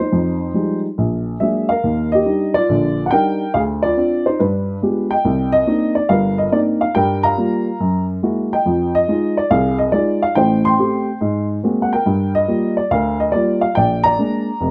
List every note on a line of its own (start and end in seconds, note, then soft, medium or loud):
0.00 0.53 D#4 medium
0.00 0.78 C5 medium
0.12 0.49 F2 medium
0.54 0.85 F3 soft
0.54 0.85 G3 soft
0.54 0.85 G#3 soft
0.54 0.85 D#4 medium
0.98 1.35 A#1 medium
1.40 1.71 F#3 medium
1.40 1.71 G#3 soft
1.40 1.71 A#3 soft
1.40 1.71 D4 medium
1.40 1.68 G#4 medium
1.40 1.67 E5 medium
1.69 2.10 A#4 medium
1.69 2.09 F5 medium
1.84 2.20 D#2 medium
2.12 2.53 G4 medium
2.12 2.52 D#5 medium
2.25 2.56 G3 soft
2.25 2.56 D4 soft
2.25 2.56 D#4 medium
2.54 3.04 F4 medium
2.54 3.08 D5 loud
2.69 3.06 A#1 medium
2.69 3.06 D3 medium
3.06 3.11 F#5 medium
3.11 3.42 G3 soft
3.11 3.42 D4 soft
3.11 3.42 D#4 medium
3.11 3.52 A#4 medium
3.11 3.51 G5 medium
3.54 3.91 D2 medium
3.54 3.62 G#4 medium
3.54 3.60 F5 medium
3.83 3.96 F4 medium
3.83 4.27 D5 medium
3.97 4.27 C4 soft
3.97 4.27 D4 soft
3.97 4.27 F4 medium
4.26 4.39 D#4 medium
4.26 4.40 C5 medium
4.40 4.77 G2 medium
4.40 5.07 D4 medium
4.40 5.07 B4 medium
4.82 5.12 G#3 soft
4.82 5.12 B3 soft
4.82 5.13 F4 soft
4.82 5.12 G4 medium
5.11 5.51 D#5 medium
5.11 5.50 G5 medium
5.25 5.62 C2 medium
5.52 5.92 D#5 loud
5.67 5.97 A#3 medium
5.67 5.97 C4 soft
5.67 5.97 D4 soft
5.67 5.97 D#4 medium
5.95 6.10 D5 medium
6.09 6.47 G1 medium
6.09 6.47 G2 medium
6.09 6.91 A#4 medium
6.09 6.39 F5 medium
6.38 6.51 D#5 medium
6.52 6.82 A#3 medium
6.52 6.83 C4 soft
6.52 6.83 D4 soft
6.52 6.83 D#4 medium
6.52 6.59 D5 medium
6.81 6.94 F5 medium
6.95 7.32 G2 medium
6.95 7.32 G3 medium
6.95 7.76 A#4 medium
6.95 7.24 G5 medium
7.23 7.77 F5 medium
7.23 8.05 A#5 loud
7.38 7.68 G3 medium
7.38 7.68 A#3 soft
7.38 7.68 F4 medium
7.80 8.17 F#2 medium
8.23 8.53 G#3 medium
8.23 8.53 A#3 soft
8.23 8.53 E4 soft
8.23 8.53 F#4 medium
8.53 8.93 D#5 medium
8.53 8.92 G5 medium
8.66 9.02 F2 medium
8.66 9.02 F3 medium
8.95 9.38 D#5 loud
9.08 9.38 G#3 medium
9.08 9.38 D#4 soft
9.08 9.38 F4 medium
9.37 9.50 D5 medium
9.51 9.87 C2 medium
9.51 10.32 G#4 medium
9.51 9.77 F5 medium
9.79 9.91 D#5 medium
9.92 10.23 G#3 medium
9.92 10.23 D#4 medium
9.92 10.23 F4 medium
9.92 10.22 D5 medium
10.22 10.36 F5 medium
10.35 10.73 A1 medium
10.35 10.73 A2 medium
10.35 11.17 C5 medium
10.35 10.62 G5 medium
10.65 11.18 G5 medium
10.65 11.45 C6 medium
10.78 11.08 A3 medium
10.78 11.08 C4 soft
10.78 11.09 G4 medium
11.21 11.58 G#2 medium
11.63 11.93 G#3 medium
11.63 11.93 A#3 soft
11.63 11.93 C4 soft
11.63 11.94 F#4 medium
11.82 11.91 F#5 medium
11.93 12.74 A#4 medium
11.93 12.32 G5 medium
12.06 12.43 G2 medium
12.35 12.74 D#5 medium
12.48 12.78 G3 medium
12.48 12.78 A#3 soft
12.48 12.78 F4 medium
12.77 12.91 D5 medium
12.91 13.28 D2 medium
12.91 13.73 A#4 medium
12.91 13.20 F5 medium
13.20 13.34 D#5 medium
13.32 13.63 G3 medium
13.32 13.64 A#3 soft
13.32 13.64 F4 medium
13.32 13.59 D5 medium
13.61 13.74 F5 medium
13.75 14.13 A#1 medium
13.75 14.04 D5 medium
13.75 14.02 G5 medium
14.04 14.71 D5 medium
14.04 14.71 A#5 loud
14.18 14.48 G#3 medium
14.18 14.49 A#3 soft
14.18 14.49 D4 medium
14.61 14.71 F1 medium